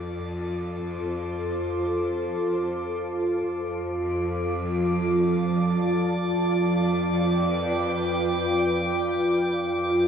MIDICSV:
0, 0, Header, 1, 4, 480
1, 0, Start_track
1, 0, Tempo, 500000
1, 9675, End_track
2, 0, Start_track
2, 0, Title_t, "Synth texture"
2, 0, Program_c, 0, 99
2, 0, Note_on_c, 0, 86, 81
2, 9675, Note_off_c, 0, 86, 0
2, 9675, End_track
3, 0, Start_track
3, 0, Title_t, "Ambient pad"
3, 0, Program_c, 1, 92
3, 0, Note_on_c, 1, 65, 70
3, 0, Note_on_c, 1, 69, 76
3, 0, Note_on_c, 1, 72, 76
3, 3312, Note_on_c, 1, 53, 90
3, 4406, Note_off_c, 1, 72, 0
3, 4563, Note_on_c, 1, 81, 91
3, 4564, Note_on_c, 1, 74, 79
3, 6419, Note_on_c, 1, 79, 78
3, 6704, Note_on_c, 1, 71, 89
3, 7188, Note_off_c, 1, 69, 0
3, 7197, Note_off_c, 1, 81, 0
3, 8879, Note_off_c, 1, 71, 0
3, 8885, Note_off_c, 1, 53, 0
3, 9146, Note_on_c, 1, 69, 77
3, 9675, Note_off_c, 1, 65, 0
3, 9675, Note_off_c, 1, 69, 0
3, 9675, Note_off_c, 1, 74, 0
3, 9675, Note_off_c, 1, 79, 0
3, 9675, End_track
4, 0, Start_track
4, 0, Title_t, "Cello section"
4, 0, Program_c, 2, 48
4, 0, Note_on_c, 2, 41, 83
4, 3268, Note_off_c, 2, 41, 0
4, 3300, Note_on_c, 2, 41, 82
4, 6023, Note_off_c, 2, 41, 0
4, 6072, Note_on_c, 2, 41, 75
4, 8837, Note_off_c, 2, 41, 0
4, 8875, Note_on_c, 2, 41, 67
4, 9675, Note_off_c, 2, 41, 0
4, 9675, End_track
0, 0, End_of_file